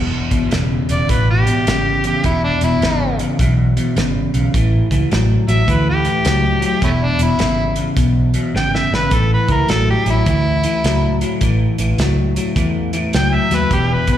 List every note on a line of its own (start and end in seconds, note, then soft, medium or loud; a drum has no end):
0.00 0.20 E1 medium
0.00 0.28 E2 medium
0.00 0.28 B2 medium
0.31 0.45 G#1 medium
0.31 0.50 E2 medium
0.31 0.50 B2 medium
0.31 kick medium
0.31 closed hi-hat medium
0.51 0.77 E1 medium
0.51 0.85 E2 medium
0.51 0.85 C#3 medium
0.51 snare loud
0.51 closed hi-hat medium
0.89 1.03 E1 medium
0.89 1.07 E2 medium
0.89 1.08 C#3 medium
0.89 1.12 D5 medium
0.89 closed hi-hat medium
1.09 1.48 A1 medium
1.09 1.42 E2 medium
1.09 1.43 B2 medium
1.09 1.28 B4 medium
1.09 kick loud
1.09 closed hi-hat medium
1.30 2.04 G4 medium
1.46 1.65 E2 medium
1.46 1.65 B2 medium
1.46 closed hi-hat medium
1.67 2.06 G#1 medium
1.67 2.00 E2 medium
1.67 2.00 C#3 medium
1.67 snare loud
1.67 closed hi-hat medium
2.04 2.22 E2 medium
2.04 2.22 C#3 medium
2.04 2.24 G4 medium
2.04 closed hi-hat medium
2.24 2.49 E1 medium
2.24 2.58 E2 medium
2.24 2.58 B2 medium
2.24 2.43 E4 medium
2.24 kick loud
2.24 closed hi-hat medium
2.44 2.62 D4 medium
2.61 2.75 E1 medium
2.61 2.79 E2 medium
2.61 2.80 B2 medium
2.61 3.19 E4 medium
2.61 closed hi-hat medium
2.81 3.20 G#1 medium
2.81 3.15 E2 medium
2.81 3.15 C#3 medium
2.81 snare loud
2.81 closed hi-hat medium
3.19 3.37 E2 medium
3.19 3.37 C#3 medium
3.19 closed hi-hat medium
3.39 3.78 B1 medium
3.39 3.73 E2 medium
3.39 3.73 B2 loud
3.39 kick loud
3.39 closed hi-hat medium
3.77 3.95 E2 medium
3.77 3.95 B2 medium
3.77 closed hi-hat medium
3.96 4.21 G#1 medium
3.96 4.29 E2 medium
3.96 4.30 C#3 medium
3.96 snare loud
3.96 closed hi-hat medium
4.34 4.47 B1 medium
4.34 4.52 E2 medium
4.34 4.52 C#3 medium
4.34 closed hi-hat medium
4.54 4.79 A1 medium
4.54 4.87 A2 medium
4.54 4.87 E3 medium
4.54 kick loud
4.54 closed hi-hat medium
4.91 5.04 C#2 medium
4.91 5.09 A2 medium
4.91 5.09 E3 medium
4.91 kick medium
4.91 closed hi-hat medium
5.11 5.36 A1 medium
5.11 5.44 A2 medium
5.11 5.44 F#3 medium
5.11 snare medium
5.11 closed hi-hat medium
5.48 5.62 A1 medium
5.48 5.66 A2 medium
5.48 5.66 F#3 medium
5.48 5.72 E5 medium
5.48 closed hi-hat medium
5.67 6.07 D2 medium
5.67 6.01 A2 medium
5.67 6.01 E3 loud
5.67 5.88 B4 medium
5.67 kick loud
5.67 closed hi-hat medium
5.89 6.62 G4 loud
6.04 6.23 A2 medium
6.04 6.23 E3 medium
6.04 closed hi-hat medium
6.25 6.64 C#2 medium
6.25 6.58 A2 medium
6.25 6.58 F#3 medium
6.25 snare loud
6.25 closed hi-hat medium
6.61 6.80 A2 medium
6.61 6.80 F#3 medium
6.61 closed hi-hat medium
6.66 6.83 G4 medium
6.81 7.07 E1 medium
6.81 7.15 E2 medium
6.81 7.15 B2 medium
6.81 6.91 A3 medium
6.81 6.90 C#4 medium
6.81 7.06 E4 medium
6.81 kick loud
6.81 closed hi-hat medium
7.04 7.22 D4 medium
7.18 7.33 E1 medium
7.18 7.37 E2 medium
7.18 7.38 B2 medium
7.18 closed hi-hat medium
7.22 7.77 E4 medium
7.39 7.78 G#1 medium
7.39 7.73 E2 medium
7.39 7.73 C#3 medium
7.39 snare loud
7.39 closed hi-hat medium
7.76 7.95 E2 medium
7.76 7.95 C#3 medium
7.76 closed hi-hat medium
7.96 8.36 B1 medium
7.96 8.30 E2 medium
7.96 8.30 B2 medium
7.96 kick loud
7.96 closed hi-hat medium
8.34 8.52 E2 medium
8.34 8.53 B2 medium
8.34 closed hi-hat medium
8.54 8.79 G#1 medium
8.54 8.88 E2 medium
8.54 8.88 C#3 medium
8.54 8.77 G5 medium
8.54 snare medium
8.75 8.93 E5 medium
8.75 snare medium
8.91 9.05 G#1 medium
8.91 9.10 E2 medium
8.91 9.11 C#3 medium
8.91 9.15 B4 loud
8.91 snare medium
9.11 9.36 A1 medium
9.11 9.46 A2 medium
9.11 9.46 E3 medium
9.11 9.31 A4 medium
9.11 kick loud
9.11 closed hi-hat medium
9.34 9.51 B4 medium
9.48 9.62 C#2 medium
9.48 9.68 A2 medium
9.48 9.68 E3 medium
9.48 9.69 A#4 medium
9.48 kick medium
9.48 closed hi-hat medium
9.69 9.94 A1 medium
9.69 10.03 A2 medium
9.69 10.03 F#3 medium
9.69 9.88 A4 medium
9.69 snare loud
9.69 closed hi-hat medium
9.90 10.08 G4 medium
10.06 10.20 A1 medium
10.06 10.25 A2 medium
10.06 10.25 F#3 medium
10.06 closed hi-hat medium
10.10 11.20 E4 loud
10.26 10.65 D2 medium
10.26 10.60 A2 medium
10.26 10.60 E3 loud
10.26 kick loud
10.26 closed hi-hat medium
10.63 10.82 A2 medium
10.63 10.82 E3 medium
10.63 closed hi-hat medium
10.84 11.22 C#2 medium
10.84 11.17 A2 medium
10.84 11.18 F#3 medium
10.84 snare loud
10.84 closed hi-hat medium
11.21 11.40 A2 medium
11.21 11.40 F#3 medium
11.21 closed hi-hat medium
11.41 11.66 A1 medium
11.41 11.75 A2 medium
11.41 11.75 E3 medium
11.41 kick loud
11.41 closed hi-hat medium
11.78 11.92 A1 medium
11.78 11.97 A2 medium
11.78 11.97 E3 medium
11.78 closed hi-hat medium
11.98 12.37 C#2 medium
11.98 12.32 A2 medium
11.98 12.33 F#3 medium
11.98 snare loud
11.98 closed hi-hat medium
12.36 12.54 A2 medium
12.36 12.54 F#3 medium
12.36 closed hi-hat medium
12.56 12.95 E2 medium
12.56 12.90 A2 medium
12.56 12.90 E3 loud
12.56 kick loud
12.56 closed hi-hat medium
12.93 13.11 A2 medium
12.93 13.12 E3 medium
12.93 closed hi-hat medium
13.13 13.39 C#2 medium
13.13 13.47 A2 medium
13.13 13.47 F#3 loud
13.13 13.36 G5 medium
13.13 snare loud
13.13 closed hi-hat medium
13.34 13.56 E5 loud
13.50 13.64 D#2 medium
13.50 13.69 A2 medium
13.50 13.69 F#3 medium
13.50 snare soft
13.50 closed hi-hat medium
13.55 13.72 B4 loud
13.71 13.96 E1 medium
13.71 14.04 E2 medium
13.71 14.04 B2 medium
13.71 13.95 G4 medium
13.71 kick loud
13.71 closed hi-hat medium
13.93 14.10 B4 medium
14.07 14.18 G#1 medium
14.07 14.18 E2 medium
14.07 14.18 B2 medium
14.07 kick medium
14.07 closed hi-hat medium
14.12 14.18 B4 medium